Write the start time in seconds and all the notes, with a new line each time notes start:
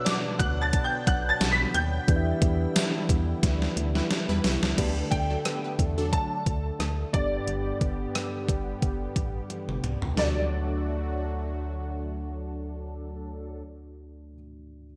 Already playing: B2 D3 F#3 B3 D4 F#4 B4 D5
0.05 D5 D6, snare, closed hi-hat, tambourine
0.39 D2 F#5 F#6, kick, closed hi-hat
0.61 A5 A6
0.73 kick, closed hi-hat
0.84 G5 G6
1.07 B1 F#5 F#6, kick, closed hi-hat
1.29 A5 A6
1.41 B1, snare, closed hi-hat, tambourine
1.51 B5 B6
1.74 D#2 G5 G6, closed hi-hat
2.07 E2 E3 G3 D4 E4 G4 B4 D5, kick, closed hi-hat
2.16 E5
2.42 E2, kick, closed hi-hat
2.76 snare, closed hi-hat, tambourine
3.09 E2, kick, closed hi-hat
3.43 D2, kick, snare, closed hi-hat
3.62 snare
3.76 D2, closed hi-hat
3.95 G3 E4 B4, snare
4.11 snare, closed hi-hat
4.29 E2 G3 E4 B4
4.44 C2, snare, open hi-hat
4.63 C#2, snare
4.77 D2 D3 A3 B3 D4 G4 A4 B4 D5, kick, closed hi-hat, crash
5.11 D2 G5, kick, closed hi-hat
5.30 F#3 D4 A4
5.45 B3 G4 B4, cross-stick, closed hi-hat
5.64 B3 G4 B4
5.79 E2, kick, closed hi-hat
5.98 F#3 D4 A4
6.12 A5, kick, closed hi-hat
6.46 D2, kick, closed hi-hat
6.79 D2, cross-stick, closed hi-hat
7.13 G1 G2 D3 G3 B3 D4 G4 D5, kick, closed hi-hat
7.47 G1, closed hi-hat
7.81 G1, kick, closed hi-hat
8.15 cross-stick, closed hi-hat
8.48 G1, kick, closed hi-hat
8.82 G1, kick, closed hi-hat
9.16 A1, kick, closed hi-hat
9.50 closed hi-hat, high tom
9.68 G1, mid tom
9.83 C2, closed hi-hat, mid tom
10.02 C#2, floor tom
10.14 D2 D3 F#3 A3 D4 F#4 A4, snare, open hi-hat
10.18 D5